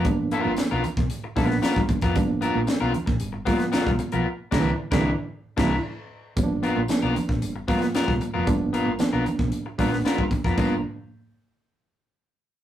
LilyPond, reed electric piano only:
\new Staff \with { instrumentName = "Reed electric piano" } { \time 4/4 \key c \major \tempo 4 = 114 <f ais b d'>4. r4 <f ais b d'>4~ <f ais b d'>16 r16 | <f ais b d'>4. r4 <f ais b f'>4~ <f ais b f'>16 r16 | r8 <d e g bes d'>8 r16 <d e g bes d'>8 r8. <e g bes e'>8 r4 | <f ais b cis' d'>8. r16 <f ais b d'>4~ <f ais b d'>16 r16 <f ais b f'>4~ <f ais b f'>16 r16 |
<f ais b d'>8. r16 <f ais b d'>4~ <f ais b d'>16 r16 <f ais b d'>4~ <f ais b d'>16 r16 | <f ais b d'>8 r2. r8 | }